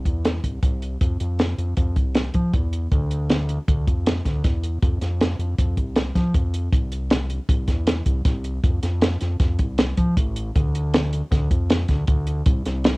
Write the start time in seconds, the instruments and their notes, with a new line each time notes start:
0.05 fingered electric bass E2, kick, closed hi-hat
0.25 snare, closed hi-hat
0.44 fingered electric bass C2, kick, closed hi-hat
0.62 fingered electric bass C2, kick, closed hi-hat
0.82 closed hi-hat
1.01 fingered electric bass F2, kick, closed hi-hat
1.20 fingered electric bass F2, closed hi-hat
1.39 snare, closed hi-hat
1.58 fingered electric bass F2, closed hi-hat
1.77 fingered electric bass F2, kick, closed hi-hat
1.96 fingered electric bass C2, kick, closed hi-hat
2.15 snare, closed hi-hat
2.34 fingered electric bass F3, kick, closed hi-hat
2.53 fingered electric bass E2, kick, closed hi-hat
2.73 closed hi-hat
2.92 fingered electric bass D2, kick, closed hi-hat
3.11 closed hi-hat
3.30 snare, closed hi-hat
3.49 closed hi-hat
3.68 fingered electric bass D2, kick, closed hi-hat
3.87 fingered electric bass F2, kick, closed hi-hat
4.06 snare, closed hi-hat
4.25 fingered electric bass D2, kick, snare, closed hi-hat
4.44 fingered electric bass E2, kick, snare, closed hi-hat
4.63 closed hi-hat
4.82 fingered electric bass F2, kick, closed hi-hat
5.01 fingered electric bass F2, snare, closed hi-hat
5.21 snare, closed hi-hat
5.39 fingered electric bass F2, closed hi-hat
5.58 fingered electric bass F2, kick, closed hi-hat
5.77 fingered electric bass C2, kick, closed hi-hat
5.96 snare, closed hi-hat
6.15 fingered electric bass F3, kick, snare, closed hi-hat
6.34 fingered electric bass F2, kick, closed hi-hat
6.54 closed hi-hat
6.72 fingered electric bass C2, kick, closed hi-hat
6.92 closed hi-hat
7.10 snare, closed hi-hat
7.30 closed hi-hat
7.49 fingered electric bass C2, kick, closed hi-hat
7.68 fingered electric bass E2, kick, snare, closed hi-hat
7.87 snare, closed hi-hat
8.06 fingered electric bass C2, kick, closed hi-hat
8.25 fingered electric bass C2, kick, snare, closed hi-hat
8.44 closed hi-hat
8.63 fingered electric bass F2, kick, closed hi-hat
8.83 fingered electric bass F2, snare, closed hi-hat
9.02 snare, closed hi-hat
9.21 fingered electric bass F2, snare, closed hi-hat
9.40 fingered electric bass F2, kick, snare, closed hi-hat
9.59 fingered electric bass C2, kick, closed hi-hat
9.78 snare, closed hi-hat
9.97 fingered electric bass F3, kick, closed hi-hat
10.17 fingered electric bass A1, kick, closed hi-hat
10.36 closed hi-hat
10.55 fingered electric bass D2, kick, closed hi-hat
10.75 closed hi-hat
10.94 snare, closed hi-hat
11.13 closed hi-hat
11.31 fingered electric bass D2, kick, snare, closed hi-hat
11.51 fingered electric bass F2, kick, closed hi-hat
11.70 snare, closed hi-hat
11.88 fingered electric bass D2, kick, snare, closed hi-hat
12.08 fingered electric bass D2, kick, closed hi-hat
12.27 closed hi-hat
12.46 fingered electric bass C2, kick, closed hi-hat
12.66 fingered electric bass C2, snare, closed hi-hat
12.85 snare, closed hi-hat